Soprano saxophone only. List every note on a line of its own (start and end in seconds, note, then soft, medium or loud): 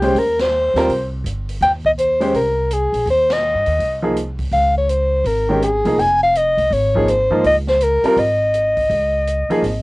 0.00 0.20 G4 medium
0.18 0.40 A#4 medium
0.41 1.09 C5 medium
1.62 1.72 G5 loud
1.86 1.92 D#5 medium
1.99 2.32 C5 medium
2.36 2.74 A#4 medium
2.73 3.08 G#4 medium
3.10 3.34 C5 medium
3.33 4.04 D#5 medium
4.53 4.74 F5 medium
4.78 4.91 C#5 medium
4.90 5.29 C5 medium
5.27 5.63 A#4 medium
5.64 6.02 G#4 medium
6.00 6.22 G#5 medium
6.23 6.38 F5 medium
6.37 6.75 D#5 medium
6.73 7.11 C#5 medium
7.10 7.45 C5 medium
7.46 7.56 D#5 medium
7.69 7.85 C5 medium
7.83 8.21 A#4 medium
8.19 9.82 D#5 medium